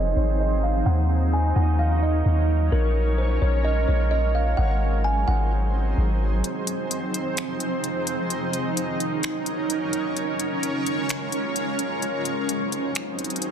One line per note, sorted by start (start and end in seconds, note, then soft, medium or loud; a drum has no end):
0.00 0.14 F1 loud
0.00 0.84 F3 medium
0.00 0.84 C4 medium
0.00 2.68 D#4 medium
0.00 0.84 G#4 medium
0.00 0.84 C5 medium
0.00 0.15 D#5 medium
0.16 0.83 G#1 loud
0.16 0.39 C#5 medium
0.40 0.62 D#5 medium
0.63 0.85 F5 medium
0.86 1.53 D#2 loud
0.86 2.70 F#3 medium
0.86 4.54 C#4 medium
0.86 2.70 A#4 medium
0.86 4.54 C#5 medium
0.86 1.30 F#5 loud
1.33 1.55 G#5 medium
1.56 2.23 D#2 loud
1.56 1.78 F#5 medium
1.79 2.01 F5 medium
2.03 2.25 D#5 medium
2.25 2.70 D#2 loud
2.72 3.39 A#1 loud
2.72 4.56 G#3 medium
2.72 4.56 F4 medium
2.72 4.56 A#4 medium
2.72 3.16 A#4 loud
3.18 3.41 C5 medium
3.42 3.86 A#1 loud
3.42 3.64 C#5 medium
3.65 3.87 D#5 medium
3.88 4.55 A#1 loud
3.88 4.10 C#5 medium
4.11 4.33 D#5 medium
4.35 4.57 F5 medium
4.57 5.25 G#1 loud
4.57 6.42 F#3 medium
4.57 6.42 C4 medium
4.57 6.42 D#4 medium
4.57 6.42 G#4 medium
4.57 6.42 C5 medium
4.57 5.01 F#5 loud
5.04 5.27 G#5 medium
5.28 5.95 G#1 loud
5.28 6.40 F#5 medium
5.98 6.42 G#1 loud
6.44 8.28 F3 medium
6.44 8.28 C4 medium
6.44 10.13 D#4 medium
6.44 8.28 G#4 medium
6.44 8.28 C5 medium
6.44 closed hi-hat medium
6.67 closed hi-hat medium
6.91 closed hi-hat medium
7.14 closed hi-hat medium
7.37 finger snap loud
7.37 closed hi-hat medium
7.60 closed hi-hat medium
7.84 closed hi-hat medium
8.07 closed hi-hat medium
8.30 10.15 F#3 medium
8.30 11.99 C#4 medium
8.30 11.99 A#4 medium
8.30 11.99 C#5 medium
8.30 closed hi-hat medium
8.53 closed hi-hat medium
8.77 closed hi-hat medium
9.00 closed hi-hat medium
9.23 finger snap loud
9.23 closed hi-hat medium
9.46 closed hi-hat medium
9.70 closed hi-hat medium
9.93 closed hi-hat medium
10.16 12.01 G#3 medium
10.16 12.01 F4 medium
10.16 closed hi-hat medium
10.40 closed hi-hat medium
10.63 closed hi-hat medium
10.86 closed hi-hat medium
11.09 finger snap loud
11.09 closed hi-hat medium
11.32 closed hi-hat medium
11.56 closed hi-hat medium
11.79 closed hi-hat medium
12.02 13.51 F#3 medium
12.02 13.51 C4 medium
12.02 13.51 D#4 medium
12.02 13.51 G#4 medium
12.02 13.51 C5 medium
12.02 closed hi-hat medium
12.25 closed hi-hat medium
12.49 closed hi-hat medium
12.72 closed hi-hat medium
12.95 finger snap loud
12.95 closed hi-hat medium
13.19 closed hi-hat medium
13.24 closed hi-hat medium
13.30 closed hi-hat medium
13.36 closed hi-hat medium
13.42 closed hi-hat medium